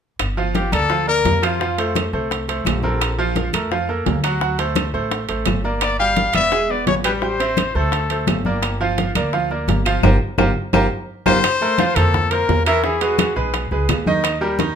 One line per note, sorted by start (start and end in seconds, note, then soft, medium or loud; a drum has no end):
0.19 0.69 G1 medium
0.19 high bongo medium
0.19 high conga soft
0.19 high timbale medium
0.19 claves medium
0.37 0.66 F3 medium
0.37 0.67 F4 medium
0.37 0.67 F5 medium
0.37 high bongo soft
0.37 high conga soft
0.55 0.72 G4 medium
0.55 high bongo medium
0.55 high conga medium
0.55 high timbale medium
0.55 low timbale medium
0.72 1.21 D2 medium
0.72 0.87 A#3 medium
0.72 1.06 A4 loud
0.72 0.87 A#4 medium
0.72 0.87 D5 medium
0.72 high conga medium
0.72 high timbale medium
0.72 claves medium
0.90 1.04 F3 medium
0.90 1.05 F4 medium
0.90 1.05 F5 medium
0.90 high bongo medium
0.90 high conga soft
1.07 1.36 A#3 medium
1.07 1.36 A#4 medium
1.07 1.46 A#4 loud
1.07 1.37 D5 medium
1.07 high bongo soft
1.07 high conga soft
1.25 2.07 F2 medium
1.25 high bongo soft
1.25 low bongo medium
1.25 high conga medium
1.25 high timbale medium
1.25 low timbale medium
1.42 1.57 F3 medium
1.42 1.57 F4 medium
1.42 1.96 F4 medium
1.42 1.58 F5 medium
1.42 high bongo soft
1.42 high conga soft
1.42 high timbale medium
1.42 claves medium
1.60 1.75 F3 medium
1.60 1.75 F4 medium
1.60 1.75 F5 medium
1.60 high bongo medium
1.60 high conga soft
1.78 2.07 A3 medium
1.78 2.07 A4 medium
1.78 2.07 C5 medium
1.78 high bongo soft
1.78 high conga soft
1.78 high timbale medium
1.95 high bongo medium
1.95 high conga medium
1.95 high timbale medium
1.95 low timbale medium
1.95 claves medium
2.13 2.62 C2 medium
2.13 2.42 A3 medium
2.13 2.42 A4 medium
2.13 2.42 C5 medium
2.13 high conga soft
2.31 high bongo medium
2.31 high conga soft
2.31 high timbale medium
2.48 2.77 A3 medium
2.48 2.77 A4 medium
2.48 2.78 C5 medium
2.48 high bongo soft
2.48 high conga soft
2.48 high timbale medium
2.65 3.48 A#1 medium
2.65 high bongo soft
2.65 low bongo medium
2.65 high conga medium
2.65 high timbale medium
2.65 low timbale medium
2.65 claves medium
2.83 3.12 C4 medium
2.83 3.12 A4 medium
2.83 3.13 A#4 medium
2.83 high bongo soft
2.83 high conga medium
3.00 high bongo medium
3.00 high conga soft
3.00 high timbale loud
3.00 claves medium
3.18 3.47 F3 medium
3.18 3.48 F4 medium
3.18 3.48 F5 medium
3.18 high bongo soft
3.18 high conga soft
3.36 high bongo medium
3.36 high conga medium
3.36 high timbale medium
3.36 low timbale medium
3.53 4.03 F2 medium
3.53 3.68 A3 medium
3.53 3.68 A4 medium
3.53 3.69 A#4 medium
3.53 high conga medium
3.53 high timbale medium
3.53 claves medium
3.71 3.86 F3 medium
3.71 3.86 F4 medium
3.71 3.86 F5 medium
3.71 high bongo medium
3.71 high conga soft
3.88 4.18 A#3 medium
3.88 4.18 A4 medium
3.88 4.18 A#4 medium
3.88 high bongo soft
3.88 high conga soft
4.06 4.88 D2 medium
4.06 high bongo soft
4.06 low bongo medium
4.06 high conga medium
4.06 high timbale medium
4.06 low timbale medium
4.24 4.38 F#3 medium
4.24 4.39 F#4 medium
4.24 4.39 F#5 medium
4.24 high bongo soft
4.24 high conga soft
4.24 high timbale medium
4.24 claves medium
4.41 4.56 F#3 medium
4.41 4.56 F#4 medium
4.41 4.56 F#5 medium
4.41 high bongo medium
4.41 high conga soft
4.58 4.88 A3 medium
4.58 4.88 A4 medium
4.58 4.88 C5 medium
4.58 high bongo soft
4.58 high conga soft
4.58 high timbale medium
4.75 high bongo medium
4.75 high conga medium
4.75 high timbale medium
4.75 low timbale medium
4.75 claves medium
4.93 5.27 A1 medium
4.93 5.23 A3 medium
4.93 5.23 A4 medium
4.93 5.23 C5 medium
4.93 high conga soft
5.11 high bongo medium
5.11 high conga soft
5.11 high timbale medium
5.29 5.46 A1 medium
5.29 5.58 A3 medium
5.29 5.58 A4 medium
5.29 5.58 C5 medium
5.29 high bongo soft
5.29 high conga soft
5.29 high timbale medium
5.46 6.29 G1 medium
5.46 high bongo soft
5.46 low bongo medium
5.46 high conga medium
5.46 high timbale medium
5.46 low timbale medium
5.46 claves medium
5.64 5.93 A#3 medium
5.64 5.93 A#4 medium
5.64 5.93 D5 medium
5.64 high bongo soft
5.81 5.98 D5 loud
5.81 high bongo medium
5.81 high conga soft
5.81 high timbale loud
5.81 claves medium
5.99 6.28 G3 medium
5.99 6.28 G4 medium
5.99 6.32 F5 loud
5.99 6.29 G5 medium
5.99 high bongo soft
5.99 high conga soft
6.16 high bongo medium
6.16 high conga medium
6.16 high timbale medium
6.16 low timbale medium
6.34 6.84 E1 medium
6.34 6.49 B3 medium
6.34 6.49 B4 medium
6.34 6.50 D5 medium
6.34 6.72 E5 loud
6.34 high conga medium
6.34 high timbale medium
6.34 claves medium
6.52 6.66 G#3 medium
6.52 6.67 G#4 medium
6.52 6.67 G#5 medium
6.52 high bongo medium
6.52 high conga soft
6.69 6.99 B3 medium
6.69 6.99 B4 medium
6.69 6.99 D5 medium
6.69 6.87 D5 medium
6.69 high bongo soft
6.69 high conga soft
6.87 7.69 A1 medium
6.87 6.95 C#5 loud
6.87 high bongo soft
6.87 low bongo medium
6.87 high conga medium
6.87 high timbale medium
6.87 low timbale medium
7.04 7.19 G3 medium
7.04 7.19 G4 medium
7.04 7.12 B4 medium
7.04 7.20 G5 medium
7.04 high bongo soft
7.04 high conga soft
7.04 high timbale medium
7.04 claves medium
7.21 7.37 G3 medium
7.21 7.37 G4 medium
7.21 7.77 C5 medium
7.21 7.37 G5 medium
7.21 high bongo medium
7.21 high conga soft
7.40 7.68 C4 medium
7.40 7.69 C5 medium
7.40 7.69 E5 medium
7.40 high bongo soft
7.40 high conga soft
7.40 high timbale medium
7.57 high bongo medium
7.57 high conga medium
7.57 high timbale medium
7.57 low timbale medium
7.57 claves medium
7.75 8.24 D2 medium
7.75 8.04 A3 medium
7.75 8.04 A4 medium
7.75 8.28 A4 medium
7.75 8.04 C5 medium
7.75 high conga soft
7.92 high bongo medium
7.92 high conga soft
7.92 high timbale medium
8.10 8.39 A3 medium
8.10 8.39 A4 medium
8.10 8.39 C5 medium
8.10 high bongo soft
8.10 high conga soft
8.10 high timbale medium
8.27 9.10 G1 medium
8.27 high bongo soft
8.27 low bongo medium
8.27 high conga medium
8.27 high timbale medium
8.27 low timbale medium
8.27 claves medium
8.45 8.74 A#3 medium
8.45 8.74 A#4 medium
8.45 8.75 D5 medium
8.45 high bongo soft
8.45 high conga medium
8.63 high bongo medium
8.63 high conga soft
8.63 high timbale medium
8.63 claves medium
8.80 9.09 F3 medium
8.80 9.10 F4 medium
8.80 9.10 F5 medium
8.80 high bongo soft
8.80 high conga soft
8.98 high bongo medium
8.98 high conga medium
8.98 high timbale medium
8.98 low timbale medium
9.15 9.64 D2 medium
9.15 9.30 A#3 medium
9.15 9.30 A#4 medium
9.15 9.30 D5 medium
9.15 high conga medium
9.15 high timbale medium
9.15 claves medium
9.33 9.47 F3 medium
9.33 9.47 F4 medium
9.33 9.48 F5 medium
9.33 high bongo medium
9.33 high conga soft
9.50 9.79 A#3 medium
9.50 9.80 A#4 medium
9.50 9.80 D5 medium
9.50 high bongo soft
9.50 high conga soft
9.68 10.01 G1 loud
9.68 high bongo soft
9.68 low bongo medium
9.68 high conga medium
9.68 high timbale medium
9.68 low timbale medium
9.86 10.00 F3 medium
9.86 10.00 F4 medium
9.86 10.00 F5 medium
9.86 high bongo soft
9.86 high timbale medium
9.86 claves medium
10.03 10.16 G1 loud
10.03 10.15 F4 medium
10.03 10.15 G4 medium
10.03 10.15 A#4 medium
10.03 high bongo loud
10.03 high conga medium
10.03 high timbale medium
10.03 claves medium
10.38 10.51 G1 loud
10.38 10.50 F4 medium
10.38 10.49 G4 medium
10.38 10.49 A#4 medium
10.38 high bongo loud
10.38 high conga medium
10.38 high timbale medium
10.38 claves loud
10.73 10.86 G1 medium
10.73 10.85 F4 medium
10.73 10.85 G4 medium
10.73 10.85 A#4 loud
10.73 high bongo medium
10.73 high conga medium
10.73 high timbale loud
10.73 claves medium
11.26 11.39 G1 medium
11.26 11.37 F4 loud
11.26 11.37 G4 medium
11.26 11.37 A#4 medium
11.26 11.97 C5 loud
11.26 high bongo loud
11.26 high conga loud
11.26 high timbale medium
11.26 claves loud
11.44 high bongo medium
11.44 high timbale loud
11.44 claves medium
11.61 11.76 A3 medium
11.61 11.76 A4 medium
11.61 11.76 A#4 medium
11.61 high bongo soft
11.61 high conga soft
11.78 11.93 F3 medium
11.78 11.93 F4 medium
11.78 11.93 F5 medium
11.78 high bongo medium
11.78 high conga medium
11.78 high timbale medium
11.78 low timbale medium
11.96 12.45 F2 medium
11.96 12.25 A#3 medium
11.96 12.32 A4 loud
11.96 12.25 A4 medium
11.96 12.26 C5 medium
11.96 high bongo soft
11.96 low conga medium
11.96 high timbale medium
11.96 claves medium
12.14 high bongo medium
12.14 high conga soft
12.14 low conga medium
12.31 12.60 A#3 medium
12.31 12.65 A#4 loud
12.31 12.61 A#4 medium
12.31 12.60 C5 medium
12.31 high bongo soft
12.31 high conga soft
12.31 high timbale medium
12.49 13.30 E2 medium
12.49 high bongo soft
12.49 low bongo medium
12.49 high conga soft
12.49 low timbale medium
12.66 12.81 E3 loud
12.66 12.81 E4 medium
12.66 12.82 A#4 loud
12.66 12.81 E5 loud
12.66 high timbale medium
12.66 claves medium
12.83 12.98 E3 medium
12.83 12.98 E4 medium
12.83 13.03 G#4 medium
12.83 12.98 E5 medium
12.83 high bongo medium
12.83 high conga soft
13.01 13.30 G#3 medium
13.01 13.36 F#4 medium
13.01 13.30 G#4 medium
13.01 13.30 B4 medium
13.01 high bongo soft
13.01 high conga soft
13.01 high timbale medium
13.18 high bongo medium
13.18 high conga medium
13.18 high timbale loud
13.18 low timbale medium
13.18 claves medium
13.36 13.69 B1 medium
13.36 13.65 G#3 medium
13.36 13.65 G#4 medium
13.36 13.65 B4 medium
13.36 high bongo soft
13.36 high conga soft
13.54 high bongo medium
13.54 high conga soft
13.54 high timbale medium
13.71 13.88 C#2 medium
13.71 14.00 G#3 medium
13.71 14.00 G#4 medium
13.71 14.00 B4 medium
13.71 high bongo soft
13.71 high conga soft
13.89 14.71 D#2 medium
13.89 high bongo soft
13.89 low bongo medium
13.89 high conga soft
13.89 high timbale medium
13.89 low timbale medium
13.89 claves medium
14.06 14.35 D#3 medium
14.06 14.36 D#4 medium
14.06 14.36 D#5 medium
14.06 high conga medium
14.24 high bongo medium
14.24 high conga soft
14.24 high timbale medium
14.24 claves medium
14.41 14.56 G3 medium
14.41 14.56 G4 medium
14.41 14.56 A#4 medium
14.41 high bongo soft
14.41 high conga soft
14.59 14.73 D#3 medium
14.59 14.73 D#4 medium
14.59 14.74 D#5 medium
14.59 high bongo medium
14.59 high conga medium
14.59 high timbale medium
14.59 low timbale medium